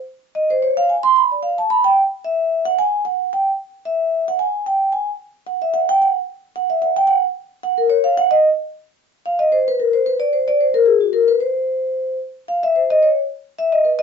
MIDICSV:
0, 0, Header, 1, 2, 480
1, 0, Start_track
1, 0, Tempo, 269906
1, 80, Time_signature, 4, 2, 24, 8
1, 24940, End_track
2, 0, Start_track
2, 0, Title_t, "Vibraphone"
2, 0, Program_c, 0, 11
2, 623, Note_on_c, 0, 75, 84
2, 864, Note_off_c, 0, 75, 0
2, 895, Note_on_c, 0, 72, 86
2, 1062, Note_off_c, 0, 72, 0
2, 1111, Note_on_c, 0, 73, 72
2, 1348, Note_off_c, 0, 73, 0
2, 1373, Note_on_c, 0, 77, 102
2, 1540, Note_off_c, 0, 77, 0
2, 1589, Note_on_c, 0, 80, 70
2, 1826, Note_off_c, 0, 80, 0
2, 1837, Note_on_c, 0, 84, 117
2, 2012, Note_off_c, 0, 84, 0
2, 2068, Note_on_c, 0, 83, 85
2, 2305, Note_off_c, 0, 83, 0
2, 2341, Note_on_c, 0, 74, 51
2, 2504, Note_off_c, 0, 74, 0
2, 2537, Note_on_c, 0, 77, 82
2, 2780, Note_off_c, 0, 77, 0
2, 2815, Note_on_c, 0, 81, 89
2, 2980, Note_off_c, 0, 81, 0
2, 3027, Note_on_c, 0, 83, 107
2, 3264, Note_off_c, 0, 83, 0
2, 3278, Note_on_c, 0, 79, 114
2, 3385, Note_off_c, 0, 79, 0
2, 3992, Note_on_c, 0, 76, 77
2, 4662, Note_off_c, 0, 76, 0
2, 4721, Note_on_c, 0, 78, 102
2, 4891, Note_off_c, 0, 78, 0
2, 4954, Note_on_c, 0, 80, 106
2, 5362, Note_off_c, 0, 80, 0
2, 5426, Note_on_c, 0, 78, 81
2, 5837, Note_off_c, 0, 78, 0
2, 5922, Note_on_c, 0, 79, 88
2, 6148, Note_off_c, 0, 79, 0
2, 6854, Note_on_c, 0, 76, 85
2, 7529, Note_off_c, 0, 76, 0
2, 7615, Note_on_c, 0, 78, 87
2, 7775, Note_off_c, 0, 78, 0
2, 7811, Note_on_c, 0, 80, 84
2, 8226, Note_off_c, 0, 80, 0
2, 8294, Note_on_c, 0, 79, 89
2, 8708, Note_off_c, 0, 79, 0
2, 8758, Note_on_c, 0, 80, 84
2, 8910, Note_off_c, 0, 80, 0
2, 9720, Note_on_c, 0, 78, 69
2, 9963, Note_off_c, 0, 78, 0
2, 9989, Note_on_c, 0, 76, 78
2, 10159, Note_off_c, 0, 76, 0
2, 10201, Note_on_c, 0, 78, 93
2, 10444, Note_off_c, 0, 78, 0
2, 10476, Note_on_c, 0, 79, 106
2, 10643, Note_off_c, 0, 79, 0
2, 10701, Note_on_c, 0, 78, 74
2, 10934, Note_off_c, 0, 78, 0
2, 11661, Note_on_c, 0, 78, 81
2, 11893, Note_off_c, 0, 78, 0
2, 11911, Note_on_c, 0, 76, 80
2, 12079, Note_off_c, 0, 76, 0
2, 12127, Note_on_c, 0, 78, 87
2, 12365, Note_off_c, 0, 78, 0
2, 12385, Note_on_c, 0, 79, 114
2, 12556, Note_off_c, 0, 79, 0
2, 12578, Note_on_c, 0, 78, 104
2, 12734, Note_off_c, 0, 78, 0
2, 13576, Note_on_c, 0, 78, 87
2, 13809, Note_off_c, 0, 78, 0
2, 13830, Note_on_c, 0, 70, 67
2, 13998, Note_off_c, 0, 70, 0
2, 14042, Note_on_c, 0, 73, 93
2, 14282, Note_off_c, 0, 73, 0
2, 14299, Note_on_c, 0, 77, 99
2, 14472, Note_off_c, 0, 77, 0
2, 14538, Note_on_c, 0, 78, 117
2, 14770, Note_off_c, 0, 78, 0
2, 14776, Note_on_c, 0, 75, 115
2, 14884, Note_off_c, 0, 75, 0
2, 16462, Note_on_c, 0, 77, 84
2, 16693, Note_off_c, 0, 77, 0
2, 16701, Note_on_c, 0, 75, 99
2, 16874, Note_off_c, 0, 75, 0
2, 16934, Note_on_c, 0, 72, 78
2, 17169, Note_off_c, 0, 72, 0
2, 17214, Note_on_c, 0, 71, 89
2, 17371, Note_off_c, 0, 71, 0
2, 17422, Note_on_c, 0, 70, 70
2, 17653, Note_off_c, 0, 70, 0
2, 17665, Note_on_c, 0, 72, 78
2, 17836, Note_off_c, 0, 72, 0
2, 17892, Note_on_c, 0, 71, 80
2, 18129, Note_off_c, 0, 71, 0
2, 18133, Note_on_c, 0, 74, 92
2, 18311, Note_off_c, 0, 74, 0
2, 18369, Note_on_c, 0, 72, 69
2, 18607, Note_off_c, 0, 72, 0
2, 18633, Note_on_c, 0, 74, 113
2, 18801, Note_off_c, 0, 74, 0
2, 18861, Note_on_c, 0, 72, 69
2, 19094, Note_off_c, 0, 72, 0
2, 19101, Note_on_c, 0, 70, 102
2, 19276, Note_off_c, 0, 70, 0
2, 19308, Note_on_c, 0, 68, 76
2, 19558, Note_off_c, 0, 68, 0
2, 19574, Note_on_c, 0, 66, 62
2, 19752, Note_off_c, 0, 66, 0
2, 19795, Note_on_c, 0, 70, 87
2, 20041, Note_off_c, 0, 70, 0
2, 20059, Note_on_c, 0, 71, 92
2, 20236, Note_off_c, 0, 71, 0
2, 20282, Note_on_c, 0, 72, 73
2, 21625, Note_off_c, 0, 72, 0
2, 22200, Note_on_c, 0, 77, 84
2, 22447, Note_off_c, 0, 77, 0
2, 22466, Note_on_c, 0, 76, 103
2, 22642, Note_off_c, 0, 76, 0
2, 22691, Note_on_c, 0, 72, 60
2, 22933, Note_off_c, 0, 72, 0
2, 22949, Note_on_c, 0, 75, 117
2, 23124, Note_off_c, 0, 75, 0
2, 23166, Note_on_c, 0, 73, 79
2, 23411, Note_off_c, 0, 73, 0
2, 24161, Note_on_c, 0, 76, 91
2, 24391, Note_off_c, 0, 76, 0
2, 24405, Note_on_c, 0, 75, 97
2, 24574, Note_off_c, 0, 75, 0
2, 24626, Note_on_c, 0, 71, 61
2, 24863, Note_off_c, 0, 71, 0
2, 24877, Note_on_c, 0, 75, 123
2, 24940, Note_off_c, 0, 75, 0
2, 24940, End_track
0, 0, End_of_file